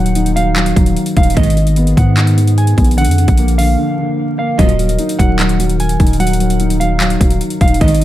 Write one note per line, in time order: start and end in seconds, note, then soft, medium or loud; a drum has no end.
0.00 0.72 D#1 loud
0.00 2.94 D#3 medium
0.00 0.36 F#3 loud
0.00 1.34 A#3 medium
0.00 0.16 D#4 medium
0.00 1.34 D#4 medium
0.00 0.32 F#5 loud
0.06 closed hi-hat medium
0.15 1.15 D#4 medium
0.15 closed hi-hat medium
0.26 closed hi-hat medium
0.36 0.55 F#3 medium
0.36 1.13 F5 medium
0.36 closed hi-hat medium
0.56 0.75 F#3 medium
0.56 clap loud
0.56 closed hi-hat medium
0.66 closed hi-hat medium
0.76 0.96 D#1 loud
0.76 1.37 F#3 medium
0.76 kick loud
0.76 closed hi-hat medium
0.86 closed hi-hat medium
0.97 closed hi-hat medium
1.06 closed hi-hat medium
1.16 1.36 D#1 loud
1.16 1.37 D#4 medium
1.16 1.35 F5 medium
1.16 kick loud
1.16 closed hi-hat medium
1.23 closed hi-hat medium
1.30 closed hi-hat medium
1.36 1.95 G#1 loud
1.36 1.65 G#2 loud
1.36 1.65 B2 loud
1.36 1.55 D#3 loud
1.36 1.65 D#3 loud
1.36 2.96 G#3 medium
1.36 2.96 B3 medium
1.36 2.96 G#4 medium
1.36 1.94 D#5 loud
1.36 kick loud
1.36 closed hi-hat medium
1.43 closed hi-hat medium
1.50 closed hi-hat medium
1.57 1.95 D#3 medium
1.57 closed hi-hat medium
1.67 closed hi-hat medium
1.76 2.76 B3 medium
1.76 closed hi-hat medium
1.87 closed hi-hat medium
1.97 2.74 G#2 loud
1.97 2.16 D#3 medium
1.97 2.54 F#5 medium
1.97 kick medium
1.97 closed hi-hat medium
2.17 2.36 D#3 medium
2.17 clap loud
2.17 closed hi-hat medium
2.27 closed hi-hat medium
2.38 2.98 D#3 medium
2.38 closed hi-hat medium
2.47 closed hi-hat medium
2.58 2.96 G#5 medium
2.58 closed hi-hat medium
2.67 closed hi-hat medium
2.77 3.09 A#1 loud
2.77 2.98 B3 medium
2.77 kick loud
2.77 closed hi-hat medium
2.84 closed hi-hat medium
2.91 closed hi-hat medium
2.98 3.16 D3 medium
2.98 4.57 F3 medium
2.98 4.57 A#3 medium
2.98 4.57 D4 medium
2.98 7.77 A#4 medium
2.98 3.55 F#5 loud
2.98 closed hi-hat medium
3.05 3.27 F2 loud
3.05 closed hi-hat medium
3.11 closed hi-hat medium
3.18 3.57 D3 medium
3.18 closed hi-hat medium
3.28 3.76 A#1 loud
3.28 kick loud
3.28 closed hi-hat medium
3.38 4.37 A#3 medium
3.38 closed hi-hat medium
3.48 closed hi-hat medium
3.58 3.77 D3 medium
3.58 4.35 F5 medium
3.58 open hi-hat medium
3.79 3.97 D3 medium
3.98 4.59 D3 medium
4.39 4.59 A#3 medium
4.39 4.57 F5 medium
4.58 4.98 D#1 loud
4.58 4.88 F#2 medium
4.58 4.88 A#2 loud
4.58 7.78 D#3 medium
4.58 4.88 F3 loud
4.58 4.77 F#3 loud
4.58 8.04 D#4 medium
4.58 5.15 D#5 loud
4.58 kick loud
4.58 closed hi-hat medium
4.69 closed hi-hat medium
4.79 5.18 F#3 medium
4.79 closed hi-hat medium
4.89 closed hi-hat medium
4.99 5.98 D#4 medium
4.99 closed hi-hat medium
5.09 closed hi-hat medium
5.19 5.97 D#1 loud
5.19 5.38 F#3 medium
5.19 5.76 F#5 medium
5.19 kick medium
5.19 closed hi-hat medium
5.39 5.58 F#3 medium
5.39 clap loud
5.39 closed hi-hat medium
5.49 closed hi-hat medium
5.59 6.18 F#3 medium
5.59 closed hi-hat medium
5.69 closed hi-hat medium
5.80 6.18 G#5 medium
5.80 closed hi-hat medium
5.89 closed hi-hat medium
6.00 7.17 D#1 loud
6.00 6.59 D#4 medium
6.00 kick loud
6.00 closed hi-hat medium
6.07 closed hi-hat medium
6.13 closed hi-hat medium
6.19 6.38 F#3 medium
6.19 6.77 F#5 loud
6.19 closed hi-hat medium
6.27 closed hi-hat medium
6.33 closed hi-hat loud
6.40 6.79 F#3 medium
6.40 closed hi-hat medium
6.50 closed hi-hat medium
6.60 7.59 D#4 medium
6.60 closed hi-hat medium
6.70 closed hi-hat medium
6.80 6.99 F#3 medium
6.80 7.57 F5 medium
6.80 closed hi-hat medium
7.00 7.19 F#3 medium
7.00 clap loud
7.00 closed hi-hat medium
7.10 closed hi-hat medium
7.21 7.40 D#1 loud
7.21 7.81 F#3 medium
7.21 kick loud
7.21 closed hi-hat medium
7.30 closed hi-hat medium
7.41 closed hi-hat medium
7.50 closed hi-hat medium
7.61 7.80 D#1 loud
7.61 7.81 D#4 medium
7.61 7.79 F5 medium
7.61 kick loud
7.61 closed hi-hat medium
7.68 closed hi-hat medium
7.74 closed hi-hat medium
7.81 8.04 G#1 loud
7.81 8.04 G#2 loud
7.81 8.04 B2 loud
7.81 7.99 D#3 medium
7.81 8.04 D#3 loud
7.81 8.04 G#3 medium
7.81 8.04 B3 medium
7.81 8.04 B4 medium
7.81 8.04 D#5 loud
7.81 kick loud
7.81 closed hi-hat medium
7.88 closed hi-hat medium
7.95 closed hi-hat medium
8.01 8.04 D#3 medium